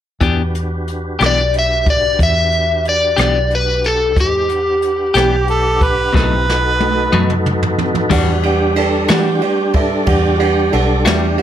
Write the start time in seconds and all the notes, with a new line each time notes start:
0.21 E2 E3 B3 D4 F#4 G4 B4, kick, closed hi-hat
0.55 closed hi-hat
0.88 closed hi-hat
1.19 B1 E3 B3 D4 G4, cross-stick, closed hi-hat
1.26 D5
1.54 closed hi-hat
1.59 E5
1.86 D5, kick, closed hi-hat
2.19 E2, kick, closed hi-hat
2.23 E5
2.52 closed hi-hat
2.85 D5, closed hi-hat
3.16 B1 E3 B3 D4 G4, cross-stick, closed hi-hat
3.51 closed hi-hat
3.55 B4
3.84 A4, closed hi-hat
4.15 E2 G#3 D#4 G4 C5, kick, closed hi-hat
4.20 G4
4.48 D4 G4 B4 F#5, closed hi-hat
4.82 closed hi-hat
5.14 B1 E3 B3 D4 G4, cross-stick, closed hi-hat
5.48 A4, closed hi-hat
5.81 B4, kick, closed hi-hat
6.13 B1 B2 F#3 A3 C4 D#4 E4 G4 B4 A#5, kick, snare
6.47 D#4 F#4 A4 B4, snare
6.80 high tom
7.12 F#2 B2 F#3 A3 D#4, mid tom
7.30 mid tom
7.46 mid tom
7.63 floor tom
7.78 floor tom
7.95 floor tom
8.10 E2 E3 G3 D4 F#4 G4 B4 D5 F#5, kick, crash
8.40 F#4 G4, ride
8.44 G4 B4 D5 F#5
8.76 G4 A4 B4 D5 G5, ride
9.08 E3 G3 D4 F#4 G4 B4 D5, snare, ride
9.12 F#5
9.38 F#4 G4 B4, ride
9.43 G4 D5 G5
9.73 G4 A4 B4 D5 E5, kick, ride
10.05 E2 G4 B4 D5 F#5, kick, ride
10.36 F#4 G4 B4 D5, ride
10.40 G4 F#5
10.72 B1 G4 A4 B4 D5 F#5, ride
11.05 E2 E3 G3 D4 F#4 G4 B4 D5 E5, snare, ride
11.37 G4 B4 D5 F#5, ride